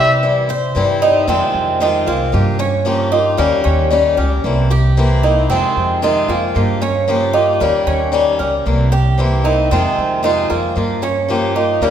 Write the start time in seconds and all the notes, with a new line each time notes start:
Already playing: C3 C4 E4 G4
0.00 G3 E5
0.23 E3 G3 C4 E4
0.49 C5, muted steel-string acoustic guitar stroke
0.75 G2 C3 E3 G3 C4 E4
1.02 G3 C4 D#4 E4
1.28 F2 C3 D#3 G#3 C4 F4
1.54 F2
1.80 C3 D#3 G#3 C4 D#4 F4
2.06 C2 G#3 A#3 C4 F4
2.32 G2 F3 A#3 F4 G4
2.59 C#4, muted steel-string acoustic guitar stroke
2.85 C#3 F3 A#3 F4 G4
3.12 A#3 D#4 F4 G4
3.37 D#2 D#3 G3 A#3 C#4 G4
3.64 D#2 C#4
3.91 D#3 G3 C#4 G4
4.17 C#2 G3 C#4 G4 A#4
4.44 C2 E3 A#3 C4 E4
4.70 G4, muted steel-string acoustic guitar stroke
4.97 C3 E3 A#3 C4 E4
5.23 A#3 C4 D#4 E4
5.50 F2 C3 D#3 G#3 C4 F4
5.77 F2
6.02 C3 D#3 G#3 C4 D#4 F4
6.28 F2 G#3 A#3 C4 F4
6.55 G2 F3 A#3 F4 G4
6.82 C#4, muted steel-string acoustic guitar stroke
7.08 C#3 F3 A#3 F4 G4
7.33 A#3 D#4 F4 G4
7.60 D#2 D#3 G3 A#3 C#4 G4
7.87 D#2 C#4
8.12 D#3 G3 C#4 G4
8.39 C#2 G3 C#4 G4 A#4
8.66 C2 E3 A#3 C4 E4
8.92 G4, muted steel-string acoustic guitar stroke
9.18 C3 E3 A#3 C4 E4
9.44 A#3 C4 D#4 E4
9.71 F2 C3 D#3 G#3 C4 F4
9.98 F2
10.23 C3 D#3 G#3 C4 D#4 F4
10.50 F2 G#3 A#3 C4 F4
10.76 G2 F3 A#3 F4 G4
11.02 C#4, muted steel-string acoustic guitar stroke
11.28 C#3 F3 A#3 F4 G4
11.55 A#3 D#4 F4 G4
11.81 D#2 D#3 G3 A#3 C#4 G4